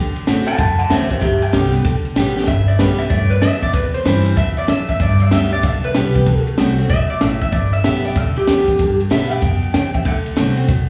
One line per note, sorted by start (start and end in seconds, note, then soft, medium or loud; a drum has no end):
0.00 0.15 D2 medium
0.00 0.26 D3 medium
0.16 muted upright bass stroke soft
0.16 ride medium
0.27 0.58 A2 loud
0.27 0.47 D3 loud
0.27 0.47 A3 loud
0.27 0.47 C4 loud
0.27 0.46 F#4 loud
0.27 snare loud
0.27 ride medium
0.47 0.59 C4 soft
0.47 0.58 F#4 medium
0.47 0.57 F#5 medium
0.47 0.58 A5 loud
0.47 ride medium
0.59 0.89 F#2 medium
0.59 1.20 A2 medium
0.59 0.78 F#5 medium
0.59 0.78 A5 medium
0.59 kick loud
0.59 ride medium
0.79 0.89 F#5 medium
0.79 0.90 A5 loud
0.79 ride medium
0.90 1.21 E2 medium
0.90 1.10 D3 loud
0.90 1.10 A3 loud
0.90 1.11 C4 loud
0.90 1.10 F#4 loud
0.90 1.09 C5 medium
0.90 1.09 E5 loud
0.90 snare loud
0.90 ride medium
1.10 1.22 C4 medium
1.10 1.21 F#4 medium
1.10 1.21 C5 medium
1.10 1.21 E5 medium
1.10 kick medium
1.10 ride medium
1.21 1.52 D2 medium
1.21 1.83 G2 medium
1.21 1.40 G4 medium
1.21 1.42 E5 medium
1.21 kick loud
1.21 ride medium
1.42 2.34 G5 loud
1.42 ride medium
1.53 1.84 C2 loud
1.53 1.73 D3 medium
1.53 1.73 G3 loud
1.53 1.73 B3 loud
1.53 1.71 G4 loud
1.53 snare loud
1.53 ride medium
1.73 1.84 B3 medium
1.73 1.84 G4 medium
1.73 snare soft
1.73 ride medium
1.85 2.15 B1 medium
1.85 2.14 D3 medium
1.85 kick loud
1.85 ride loud
2.05 ride medium
2.16 2.47 A1 medium
2.16 2.35 D3 loud
2.16 2.36 G3 loud
2.16 2.36 B3 loud
2.16 2.35 G4 loud
2.16 snare loud
2.16 ride medium
2.36 2.48 B3 medium
2.36 2.47 G4 medium
2.36 snare medium
2.44 2.78 G1 medium
2.44 3.09 G2 medium
2.44 2.67 E5 loud
2.44 kick loud
2.44 snare medium
2.44 ride medium
2.68 2.79 D5 medium
2.68 ride medium
2.79 3.09 B1 medium
2.79 2.98 D3 medium
2.79 2.99 G3 medium
2.79 2.99 B3 loud
2.79 2.98 G4 medium
2.79 2.99 B4 medium
2.79 snare loud
2.79 ride medium
2.99 3.11 B3 soft
2.99 3.10 G4 medium
2.99 3.09 E5 loud
2.99 snare soft
2.99 ride medium
3.09 3.41 G2 medium
3.09 3.41 A2 medium
3.09 3.30 D5 medium
3.09 kick loud
3.09 ride medium
3.30 3.41 B4 medium
3.30 ride medium
3.42 3.73 F#2 medium
3.42 3.73 B2 loud
3.42 3.62 E5 loud
3.42 snare loud
3.42 ride medium
3.62 3.73 D5 loud
3.62 kick medium
3.62 ride medium
3.73 4.04 E2 medium
3.73 4.35 C3 medium
3.73 3.93 B4 medium
3.73 kick loud
3.73 ride medium
3.94 4.25 C5 loud
3.94 ride medium
4.05 4.36 G2 loud
4.05 4.36 E3 medium
4.05 4.36 G3 loud
4.05 4.36 C4 loud
4.05 4.36 E4 loud
4.05 snare loud
4.05 ride loud
4.26 ride medium
4.37 4.67 E2 medium
4.37 4.67 B2 medium
4.37 4.57 E5 loud
4.37 kick loud
4.37 ride medium
4.57 4.69 D5 medium
4.57 ride medium
4.68 4.99 F#2 medium
4.68 4.99 A2 loud
4.68 4.89 E5 loud
4.68 snare loud
4.68 ride medium
4.89 5.01 E5 loud
4.89 kick medium
4.89 ride medium
5.00 5.61 G2 loud
5.00 5.31 G2 medium
5.00 5.22 D5 loud
5.00 kick loud
5.00 ride medium
5.20 5.31 E5 medium
5.20 ride medium
5.31 5.62 D2 loud
5.31 5.51 D3 medium
5.31 5.51 G3 loud
5.31 5.51 B3 loud
5.31 5.50 G4 loud
5.31 5.52 E5 loud
5.31 snare loud
5.31 ride medium
5.52 5.63 B3 soft
5.52 5.62 G4 medium
5.52 5.64 D5 medium
5.52 ride medium
5.63 5.94 B1 medium
5.63 5.93 D3 medium
5.63 5.83 E5 loud
5.63 kick loud
5.63 ride medium
5.84 6.45 B4 loud
5.84 ride medium
5.94 6.25 C2 medium
5.94 6.14 D3 medium
5.94 6.14 G3 loud
5.94 6.15 B3 loud
5.94 6.14 G4 loud
5.94 snare loud
5.94 ride medium
6.15 6.27 B3 medium
6.15 6.26 G4 medium
6.15 kick medium
6.15 ride medium
6.26 6.57 D2 medium
6.26 6.56 D3 medium
6.26 kick loud
6.26 ride medium
6.47 ride medium
6.58 6.89 C2 medium
6.58 6.77 D3 medium
6.58 6.78 A3 medium
6.58 6.78 C4 loud
6.58 6.77 F#4 loud
6.58 snare loud
6.58 ride medium
6.79 6.90 C4 medium
6.79 6.89 F#4 medium
6.79 snare soft
6.79 ride medium
6.89 7.20 B1 medium
6.89 7.20 B2 medium
6.89 7.10 E5 loud
6.89 kick loud
6.89 ride medium
7.10 7.21 D5 medium
7.10 ride medium
7.21 7.52 A1 medium
7.21 7.52 A2 loud
7.21 7.40 E5 medium
7.21 snare loud
7.21 ride medium
7.41 7.52 E5 loud
7.41 kick medium
7.41 ride medium
7.52 7.83 G1 medium
7.52 8.14 G2 medium
7.52 7.72 D5 medium
7.52 kick loud
7.52 ride medium
7.73 7.83 E5 loud
7.73 ride medium
7.84 8.15 B1 loud
7.84 8.04 D3 medium
7.84 8.04 G3 medium
7.84 8.04 B3 loud
7.84 8.04 G4 loud
7.84 8.05 E5 loud
7.84 snare loud
7.84 ride loud
8.05 8.16 B3 medium
8.05 8.16 G4 medium
8.05 8.17 D5 medium
8.05 snare soft
8.05 ride medium
8.16 8.35 D2 medium
8.16 8.46 D3 medium
8.16 8.36 E5 loud
8.16 kick loud
8.16 ride loud
8.36 8.98 G4 loud
8.36 muted upright bass stroke soft
8.36 ride medium
8.47 8.67 E2 medium
8.47 8.67 D3 loud
8.47 8.67 G3 loud
8.47 8.67 B3 loud
8.47 8.66 G4 loud
8.47 snare loud
8.47 ride medium
8.67 8.79 B3 soft
8.67 8.78 G4 medium
8.67 muted upright bass stroke soft
8.67 kick medium
8.67 ride medium
8.79 9.10 G2 medium
8.79 9.40 G2 medium
8.79 kick loud
8.79 ride medium
9.00 ride medium
9.10 9.30 B2 loud
9.10 9.30 D3 medium
9.10 9.30 G3 medium
9.10 9.31 B3 loud
9.10 9.29 G4 loud
9.10 9.32 E5 loud
9.10 snare loud
9.10 ride medium
9.30 9.42 B3 medium
9.30 9.42 G4 medium
9.30 9.73 G5 loud
9.30 muted upright bass stroke soft
9.30 ride medium
9.42 9.73 F#2 medium
9.42 9.73 B2 medium
9.42 kick loud
9.42 ride medium
9.63 ride medium
9.74 10.05 E2 medium
9.74 10.05 C3 loud
9.74 9.95 G5 medium
9.74 snare loud
9.74 ride loud
9.94 10.06 E5 loud
9.94 kick medium
9.94 ride medium
10.05 10.36 D2 loud
10.05 10.35 D3 loud
10.05 10.37 F#5 loud
10.05 kick loud
10.05 ride loud
10.26 ride medium
10.36 10.56 C2 loud
10.36 10.56 D3 medium
10.36 10.57 A3 loud
10.36 10.57 C4 loud
10.36 10.56 F#4 loud
10.36 snare loud
10.36 ride loud
10.57 10.69 C4 medium
10.57 10.68 F#4 medium
10.57 muted upright bass stroke soft
10.57 ride medium
10.69 10.89 B1 medium
10.69 10.89 B2 medium
10.69 kick loud
10.69 ride loud